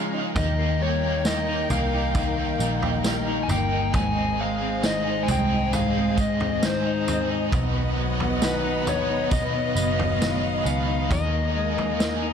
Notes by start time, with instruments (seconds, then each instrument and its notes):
Already playing: clean electric guitar C#3 F3 G#3 D#4, overdriven electric guitar G#3 D#4 F4, string section C#4 G#4 D#5 F5
0.14 clean electric guitar D#4
0.35 picked electric bass D#2, overdriven electric guitar D#3 A#3 D#4 G4, clean electric guitar D#3, string section D#3 D#4 A#4 G5, electric slide guitar D#5, kick, floor tom, tambourine
0.59 clean electric guitar A#3
0.78 clean electric guitar G3, overdriven electric guitar A#3 D#4 G4, electric slide guitar C#5
1.04 clean electric guitar A#3
1.24 overdriven electric guitar D#3 A#3 D#4 G4, clean electric guitar G3, electric slide guitar D#5, snare, tambourine
1.48 clean electric guitar D#4
1.69 picked electric bass C2, clean electric guitar A#3, overdriven electric guitar A#3 D#4 G4, electric slide guitar F5, floor tom, tambourine
1.93 clean electric guitar D#4
2.13 overdriven electric guitar D#3 A#3 D#4 G4, clean electric guitar D#3, kick, floor tom, tambourine
2.38 clean electric guitar A#3
2.58 picked electric bass A#1, clean electric guitar G3, overdriven electric guitar A#3 D#4 G4, tambourine
2.82 clean electric guitar A#3, floor tom
2.91 celesta D#5
2.95 celesta A#5
3.03 overdriven electric guitar D#3 A#3 D#4 G4, clean electric guitar G3, snare, tambourine
3.27 clean electric guitar D#4
3.43 electric slide guitar G#5
3.47 picked electric bass G1, clean electric guitar A#3, overdriven electric guitar A#3 D#4 G4, electric slide guitar G5, floor tom, tambourine
3.72 clean electric guitar D#4
3.92 picked electric bass G#1, overdriven electric guitar G#2 D#3 G#3 C4 D#4 G#4, clean electric guitar G#2, string section G#3 G#4 C5 D#5, electric slide guitar G#5, kick, floor tom, tambourine
4.17 clean electric guitar C4
4.37 clean electric guitar G#3, overdriven electric guitar C4 D#4 G#4, electric slide guitar F5
4.41 overdriven electric guitar G#3
4.62 clean electric guitar C4
4.82 overdriven electric guitar G#2 D#3 G#3 C4 D#4 G#4, clean electric guitar D#3, snare, tambourine
4.86 electric slide guitar D#5
5.04 clean electric guitar D#4, celesta C5
5.23 overdriven electric guitar G#4, electric slide guitar G#5
5.28 picked electric bass C2, overdriven electric guitar G#3 C4 D#4, clean electric guitar C4, electric slide guitar G5, floor tom, tambourine
5.52 clean electric guitar D#4
5.72 clean electric guitar G#2, overdriven electric guitar G#3 C4 D#4 G#4, electric slide guitar F5, floor tom, tambourine
5.97 clean electric guitar C4
6.16 clean electric guitar G#3, overdriven electric guitar C4 D#4 G#4, electric slide guitar D#5, kick, tambourine
6.20 overdriven electric guitar G#3
6.40 clean electric guitar C4, floor tom
6.61 overdriven electric guitar G#2 D#3 G#3 C4 D#4 G#4, clean electric guitar D#3, electric slide guitar C5, snare, tambourine
6.86 clean electric guitar D#4
7.06 overdriven electric guitar G#3 C4 D#4 G#4, clean electric guitar C4, floor tom, tambourine
7.31 clean electric guitar D#4
7.51 picked electric bass B1, overdriven electric guitar B2 D#3 F#3 B3 D#4 B4, clean electric guitar B2, string section B3 B4 F#5, kick, floor tom, tambourine
7.75 clean electric guitar B3
7.96 clean electric guitar F#3, overdriven electric guitar F#3 B3 D#4 B4
8.20 clean electric guitar B3, floor tom
8.41 overdriven electric guitar B2 D#3 F#3 B3 D#4 B4, clean electric guitar D#3, electric slide guitar B4, celesta D#5, snare, tambourine
8.48 celesta G#5
8.53 celesta A#5
8.64 clean electric guitar D#4
8.86 picked electric bass G#1, overdriven electric guitar F#3 B3 D#4 B4, clean electric guitar B3, electric slide guitar C#5, floor tom, tambourine
9.09 clean electric guitar D#4
9.31 clean electric guitar B2, overdriven electric guitar F#3 B3 D#4 B4, electric slide guitar D#5, string section F5, kick, floor tom, tambourine
9.54 clean electric guitar B3, celesta C#5
9.75 picked electric bass F#1, clean electric guitar F#3, overdriven electric guitar F#3 B3 D#4 B4, tambourine
9.99 clean electric guitar B3, floor tom
10.20 overdriven electric guitar B2 D#3 F#3 B3 D#4 B4, clean electric guitar D#3, snare, tambourine
10.44 clean electric guitar D#4
10.59 celesta D#5
10.63 picked electric bass C#2, clean electric guitar B3, overdriven electric guitar D#4 B4, electric slide guitar F5, celesta G#5, tambourine
10.67 overdriven electric guitar F#3 B3
10.88 clean electric guitar D#4
11.09 picked electric bass D#2, overdriven electric guitar D#3 G#3 D#4 A#4, string section D#3 A#3 G#4, clean electric guitar D#3, electric slide guitar D#5, kick, floor tom, tambourine
11.33 clean electric guitar A#3
11.55 clean electric guitar G#3, overdriven electric guitar G#3 D#4 A#4
11.78 clean electric guitar A#3, floor tom
12.00 overdriven electric guitar D#3 G#3 D#4 A#4, snare, tambourine
12.22 clean electric guitar D#4